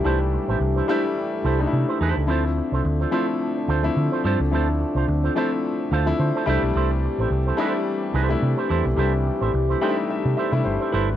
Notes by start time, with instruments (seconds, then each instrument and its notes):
Already playing: french horn section E3 G3 A3 D4 G4, grand piano G3 A3 D4 D#4 E4
0.04 fingered electric bass C2, grand piano G3 A3 D4 E4, clean electric guitar E4 A4 C5
0.20 muted clean electric guitar stroke
0.33 muted clean electric guitar stroke
0.48 fingered electric bass A1, clean electric guitar E4 A4 C5
0.60 fingered electric bass C2, muted clean electric guitar stroke
0.76 clean electric guitar E4 A4 C5
0.88 grand piano G3 A3 D4 E4, clean electric guitar E4 A4 C5
1.04 muted clean electric guitar stroke
1.17 muted clean electric guitar stroke
1.32 muted clean electric guitar stroke
1.44 fingered electric bass C2, clean electric guitar E4 A4 C5
1.59 grand piano G3 A3 D4 D#4, muted clean electric guitar stroke
1.67 grand piano E4
1.73 fingered electric bass C3, muted clean electric guitar stroke
1.88 clean electric guitar E4 A4 C5
2.01 fingered electric bass E2, clean electric guitar E4 A4 C5
2.17 fingered electric bass C#2, muted clean electric guitar stroke
2.26 fingered electric bass D2, french horn section D3 F3 C4 D4, grand piano F3 A3 C4 E4, clean electric guitar F4 A4 C5
2.45 muted clean electric guitar stroke
2.57 muted clean electric guitar stroke
2.72 fingered electric bass C2, clean electric guitar F4 A4 C5
2.85 fingered electric bass D2, muted clean electric guitar stroke
3.00 clean electric guitar F4 A4 C5
3.11 grand piano F3 A3 C4 E4, clean electric guitar F4 A4 C5
3.28 muted clean electric guitar stroke
3.41 muted clean electric guitar stroke
3.57 muted clean electric guitar stroke
3.68 fingered electric bass D2, clean electric guitar F4 A4 C5
3.83 grand piano F3 A3 C4 E4
3.97 fingered electric bass D3, muted clean electric guitar stroke
4.12 clean electric guitar F4 A4 C5
4.24 fingered electric bass G2, clean electric guitar F4 A4 C5
4.40 fingered electric bass C#2
4.51 fingered electric bass D2, grand piano F3 A3 C4 E4, clean electric guitar F4 A4 C5
4.69 muted clean electric guitar stroke
4.81 muted clean electric guitar stroke
4.95 fingered electric bass C2, clean electric guitar F4 A4 C5
5.08 fingered electric bass D2, muted clean electric guitar stroke
5.23 clean electric guitar F4 A4 C5
5.35 grand piano F3 A3 C4 E4, clean electric guitar F4 A4 C5
5.65 muted clean electric guitar stroke
5.80 muted clean electric guitar stroke
5.91 fingered electric bass D2, clean electric guitar F4 A4 C5, grand piano F5
6.06 grand piano F3 A3 C4 E4
6.19 fingered electric bass D3, grand piano C5, muted clean electric guitar stroke
6.36 clean electric guitar F4 A4 C5
6.46 fingered electric bass C2, french horn section E3 G3 G4, grand piano G3 A3 D4 E4, clean electric guitar E4 A4 C5
6.62 fingered electric bass B1, muted clean electric guitar stroke
6.75 fingered electric bass C2, clean electric guitar E4 A4 C5
6.91 muted clean electric guitar stroke
7.04 muted clean electric guitar stroke
7.18 fingered electric bass A1, clean electric guitar E4 A4 C5
7.31 fingered electric bass C2, muted clean electric guitar stroke
7.47 clean electric guitar E4 A4 C5
7.57 grand piano G3 A3 D4 E4, clean electric guitar E4 A4 C5
7.75 muted clean electric guitar stroke
7.87 muted clean electric guitar stroke
8.02 muted clean electric guitar stroke
8.14 fingered electric bass C2, clean electric guitar E4 A4 C5
8.29 grand piano G3 A3 D4 E4, muted clean electric guitar stroke
8.42 fingered electric bass C3, muted clean electric guitar stroke
8.57 clean electric guitar E4 A4 C5
8.69 fingered electric bass E2, clean electric guitar E4 A4 C5
8.85 fingered electric bass B1, muted clean electric guitar stroke
8.97 fingered electric bass C2, grand piano G3 A3 D4 E4, clean electric guitar E4 A4 C5
9.14 muted clean electric guitar stroke
9.26 muted clean electric guitar stroke
9.41 fingered electric bass A1, clean electric guitar E4 A4 C5
9.54 fingered electric bass C2, muted clean electric guitar stroke
9.69 clean electric guitar E4 A4 C5
9.81 grand piano G3 A3 D4 D#4 G5, clean electric guitar E4 A4 C5
9.89 grand piano E4
10.10 grand piano E5, muted clean electric guitar stroke
10.25 fingered electric bass C3, muted clean electric guitar stroke
10.37 clean electric guitar E4 A4 C5, grand piano E5
10.52 fingered electric bass C3, grand piano G3 A3 D4 E4, muted clean electric guitar stroke
10.64 fingered electric bass G1, grand piano C5, muted clean electric guitar stroke
10.80 clean electric guitar E4 A4 C5
10.92 fingered electric bass G1, clean electric guitar E4 A4 C5, grand piano B4
11.09 fingered electric bass G#1